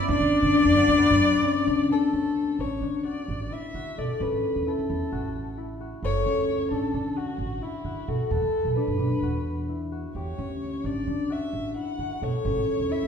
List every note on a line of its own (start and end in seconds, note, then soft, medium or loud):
0.00 0.98 B3 medium
0.00 0.14 C#4 medium
0.00 1.35 E4 medium
0.08 0.18 D2 loud
0.08 1.90 D4 medium
0.08 0.53 D4 medium
0.08 1.87 D5 loud
0.20 0.30 D3 medium
0.42 0.66 D3 medium
0.54 1.49 D4 medium
0.65 0.75 F#2 medium
0.76 3.04 F#4 medium
0.88 1.07 D2 medium
0.99 4.09 B3 medium
1.10 1.30 F#2 medium
1.43 1.72 C#4 medium
1.66 1.87 C#2 medium
1.66 1.89 D4 medium
1.89 2.19 D4 medium
1.89 2.62 A4 medium
2.13 2.54 D2 medium
2.13 2.65 C#4 medium
2.59 2.79 A1 medium
2.59 2.81 D4 medium
2.59 3.06 C#5 medium
2.81 3.22 D3 medium
2.81 4.26 D4 soft
3.05 3.74 F#4 medium
3.05 3.54 D5 medium
3.28 3.49 A1 medium
3.51 4.66 E4 medium
3.51 4.00 E5 medium
3.74 3.85 D3 medium
3.74 5.12 F#4 soft
3.97 4.08 B2 soft
3.97 6.03 A4 medium
3.97 4.24 D5 medium
4.20 4.31 A1 medium
4.20 6.25 C#4 medium
4.20 4.70 B4 medium
4.32 4.42 A1 medium
4.56 4.65 E2 medium
4.67 4.89 E4 medium
4.67 5.58 A4 medium
4.79 4.88 C#2 medium
4.89 5.00 E2 medium
4.89 5.57 E4 soft
5.12 5.92 A1 medium
5.12 5.80 F#4 medium
5.58 7.62 E4 medium
5.80 7.16 F#4 medium
6.03 6.23 F#1 medium
6.03 8.08 A4 medium
6.03 6.68 C#5 medium
6.25 6.66 D2 medium
6.25 6.77 C#4 medium
6.71 6.91 A1 medium
6.71 6.94 D4 medium
6.71 7.20 A4 medium
6.94 7.34 D3 medium
6.94 8.76 D4 medium
7.16 7.84 F#4 medium
7.16 7.64 F#4 medium
7.38 7.59 A1 medium
7.62 9.69 E4 medium
7.62 8.10 E4 medium
7.84 7.95 D3 medium
7.84 9.22 F#4 medium
8.08 8.18 B2 medium
8.08 8.33 F#4 medium
8.08 10.28 A4 medium
8.31 8.41 E2 medium
8.31 11.41 B3 medium
8.31 8.76 A4 medium
8.42 8.52 E2 medium
8.65 8.75 B1 medium
8.77 9.00 D4 medium
8.77 9.65 B4 medium
8.88 8.98 G2 medium
8.99 9.09 B1 medium
8.99 10.44 D4 soft
9.22 10.04 E2 medium
9.22 9.91 F#4 medium
9.69 11.76 E4 medium
9.92 10.22 F#4 medium
10.15 10.35 E2 medium
10.15 11.36 G4 medium
10.15 10.88 C#5 medium
10.38 10.79 D2 medium
10.38 10.90 C#4 medium
10.84 11.05 A1 medium
10.84 11.07 D4 medium
10.84 11.34 D5 medium
11.07 11.48 D3 medium
11.07 12.52 D4 soft
11.30 11.99 F#4 medium
11.30 11.76 E5 medium
11.53 11.73 A1 medium
11.76 12.90 E4 medium
11.76 12.25 F#5 medium
11.99 12.09 D3 medium
11.99 13.07 F#4 medium
12.22 12.32 B2 medium
12.22 13.07 A4 medium
12.22 12.93 C#5 medium
12.45 12.55 A1 medium
12.45 13.07 C#4 medium
12.57 12.67 A1 medium
12.80 12.90 E2 medium
12.91 13.07 E4 medium
12.91 13.07 E5 medium
13.03 13.07 C#2 medium